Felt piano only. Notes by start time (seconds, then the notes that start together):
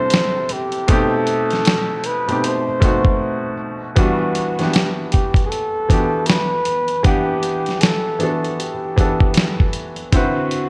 Already playing: C3 G3 D4 E4 A4
0.88 B2 A3 C4 D#4
0.92 G4
2.28 B2 A3 C4 D#4
2.32 G4
2.80 B2 A3 C4 D#4
2.85 F#4
3.96 E3 B3 D4 F#4
4.00 G3
4.59 E3 B3 D4 F#5
4.63 G4
5.88 E3 B3 D4 F#4
5.93 G4
7.03 E3 B3 D4 F#5
7.07 G4
8.19 E3 B3 D4 F#4
8.23 A4
8.96 E3 B3 D4 F#5
9.01 A4
10.12 D3 C4 E4 F#4
10.17 B4